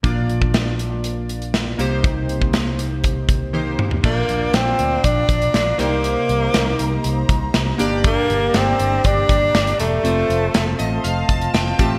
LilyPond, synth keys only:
\new Staff \with { instrumentName = "Synth keys" } { \time 4/4 \key bes \mixolydian \tempo 4 = 120 << { bes,4. r2 c8~ | c4 r2. | bes,4. r2 c8~ | c4 r2 r8 g,8~ |
g,4 r2. | r4. ees''8 f''8 a''8 g''8 a''8 | } \\ { <bes d' f' d''>2.~ <bes d' f' d''>8 <bes ees' g' c''>8~ | <bes ees' g' c''>2. <bes ees' g' c''>8 r8 | <bes d' f' d''>2.~ <bes d' f' d''>8 <bes ees' g' c''>8~ | <bes ees' g' c''>2.~ <bes ees' g' c''>8 <bes d' g' d''>8~ |
<bes d' g' d''>2.~ <bes d' g' d''>8 r8 | <a c' f' c''>2.~ <a c' f' c''>8 <a c' f' g'>8 | } >> }